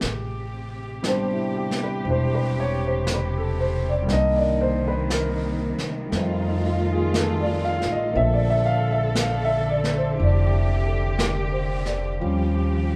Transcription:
Already playing: G#4
0.01 A1 C3 G4, brush sweep, snare
1.02 G3 B3 C4 D4, brush sweep, snare, hi-hat pedal
1.08 C5
1.33 E4
1.57 G4
1.71 snare
1.83 B4
2.03 E1 C4 D4 E4, brush sweep
2.10 C5
2.35 B4
2.60 C#5
2.87 C5
3.07 brush sweep, snare, hi-hat pedal
3.14 B4
3.38 A4
3.60 C5
3.89 D5
4.02 G3 A#3
4.09 C2 D#3 A#3 D4 D#5, brush sweep, snare
4.13 D#4
4.37 D5
4.61 C5
4.88 B4
5.10 A#4, brush sweep, snare, hi-hat pedal
5.78 muted upright bass stroke, snare
6.05 G3 A3
6.12 F2 D#3 A3 C4 F4, brush sweep, snare
6.16 D#4
6.41 D#4
6.66 F4
6.92 G#4
7.14 A4, brush sweep, snare, hi-hat pedal
7.41 D5
7.65 F5
7.82 A1, snare
7.92 D#5
8.13 A#1 D3 A#3 C4 D4 F4 A4 E5, brush sweep
8.34 D5
8.50 E5
8.66 F5
8.92 E5
9.15 brush sweep, snare, hi-hat pedal
9.20 F5
9.45 E5
9.70 D5
9.84 snare
9.97 C5
10.14 D4 E4 G4, brush sweep
10.20 F1 D5
10.86 A4
11.18 A#4, brush sweep, snare, hi-hat pedal
11.53 C5
11.86 D5, snare
12.19 D#2 F3 G3 C4 C#4 F4 G4, brush sweep

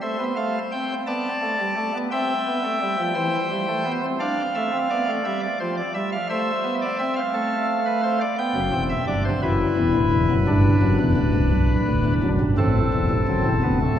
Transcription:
0.02 A3 C5 E5
0.19 B3
0.36 A3 F5
0.72 C4 G5
1.07 B3 D5 A5
1.41 A3
1.59 G3
1.77 A3
1.95 B3
2.11 C4 E5 G5
2.46 B3
2.64 A3
2.81 G3
2.98 F3
3.15 E3 C5
3.50 G3
3.68 A3
3.85 B3
4.02 C4
4.20 D4 D5 F5
4.55 A3 E5
4.73 C4
4.90 B3 D5
5.07 A3
5.25 G3 E5
5.43 D5
5.60 F3 C5
5.77 D5
5.94 G3 E5
6.12 F5
6.29 A3 C5 E5
6.64 B3
6.82 D5
6.99 C4 E5
7.16 F5
7.34 A3 A4
7.86 B4
8.03 C5
8.21 D5
8.38 B3 G5
8.55 F#1 F#2
8.72 E1 E2 C4
8.89 E5
9.07 G1 G2 D4 D5
9.25 C5
9.42 F#1 F#2 E4 B4
9.77 E1 E2
9.95 D1 D2
10.13 E1 E2
10.30 F#1 F#2
10.47 G1 G2 D4
10.82 F#1 F#2
11.00 E1 E2
11.17 D1 D2
11.34 C1 C2
11.52 B1
11.88 D1 D2
12.05 E1 E2
12.23 F#1 F#2
12.41 G1 G2
12.58 A1 A2 C4 A4
12.94 E1 E2
13.10 G1 G2
13.28 F#1 F#2
13.46 E1 E2
13.63 D1 D2 B3
13.81 A3

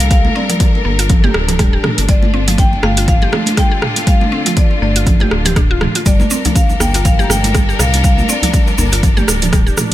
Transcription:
Already playing: C2 G3 D4 A4 A#4, impact
0.00 closed hi-hat, muted conga
0.11 G3 F5, kick, closed hi-hat
0.25 high conga
0.35 C4 D5, muted conga
0.49 F3, closed hi-hat, high conga
0.60 kick, closed hi-hat, low conga
0.75 muted conga
0.85 G1 A#3
0.99 F4, closed hi-hat
1.09 F3, kick, closed hi-hat, low conga
1.24 G4, muted conga, high conga
1.34 D1, cross-stick
1.48 closed hi-hat, low conga
1.59 G3, kick, cross-stick, closed hi-hat, mid tom, muted conga
1.73 G4
1.84 cross-stick, mid tom, high conga, low conga
1.98 G1, closed hi-hat, muted conga
2.09 D3 G3 A3 F4 D5, kick, closed hi-hat
2.23 high conga
2.34 C4, muted conga
2.47 F3, closed hi-hat, high conga
2.58 G5, kick, closed hi-hat, low conga
2.73 muted conga
2.83 G1 A3 F5, cross-stick
2.97 F4, closed hi-hat
3.08 F3 F5, kick, closed hi-hat, mid tom
3.22 G4, muted conga
3.32 cross-stick, high conga, low conga
3.46 closed hi-hat, high conga
3.57 G3 G5, kick, cross-stick, closed hi-hat, muted conga
3.72 G4
3.82 cross-stick, mid tom
3.96 closed hi-hat, muted conga
4.07 G3 F5, kick, closed hi-hat
4.21 high conga
4.32 C4, muted conga
4.46 F3, closed hi-hat, high conga
4.57 D5, kick, closed hi-hat, low conga
4.71 muted conga
4.82 G1 A3 D5
4.96 F4, closed hi-hat
5.06 F3, kick, closed hi-hat, low conga
5.20 G4, muted conga, high conga
5.31 D1, cross-stick
5.45 G4, closed hi-hat, low conga
5.56 D4, kick, cross-stick, closed hi-hat, mid tom, muted conga
5.71 F4
5.81 cross-stick, mid tom, high conga, low conga
5.95 F4, closed hi-hat, muted conga
6.06 G1 G3 D4 A4 A#4 D5, kick, closed hi-hat, shaker
6.20 high conga, djembe tone, shaker
6.30 C4, muted conga, shaker
6.45 F3, closed hi-hat, high conga, djembe bass, shaker
6.55 F5, kick, closed hi-hat, low conga, shaker
6.69 muted conga, djembe tone, shaker
6.80 G1 A#3 G5, cross-stick, djembe bass, shaker
6.94 F4, closed hi-hat, djembe slap, shaker
7.05 F3 F5, kick, closed hi-hat, mid tom, djembe slap, djembe tone, shaker
7.19 G4, muted conga, shaker
7.24 A#5
7.30 G1 G5, cross-stick, high conga, low conga, shaker
7.44 closed hi-hat, high conga, shaker
7.54 G3, kick, cross-stick, closed hi-hat, djembe tone, shaker
7.69 G4, shaker
7.79 C2 F5, cross-stick, mid tom, djembe slap, shaker
7.93 closed hi-hat, muted conga, djembe tone, shaker
8.04 G3 F5, kick, closed hi-hat, shaker
8.18 high conga, shaker
8.29 C4 D5, muted conga, shaker
8.43 F3, closed hi-hat, djembe tone, high conga, djembe bass, shaker
8.53 kick, closed hi-hat, low conga, shaker
8.67 muted conga, djembe slap, shaker
8.78 G1 A#3, djembe tone, djembe bass, shaker
8.92 F4, closed hi-hat, djembe slap, shaker
9.03 F3, kick, closed hi-hat, low conga, shaker
9.17 G4, muted conga, high conga, shaker
9.28 D1, cross-stick, djembe tone, shaker
9.42 closed hi-hat, low conga, shaker
9.53 G3, kick, cross-stick, closed hi-hat, mid tom, muted conga, shaker
9.67 G4, djembe tone, shaker
9.77 cross-stick, mid tom, high conga, low conga, shaker

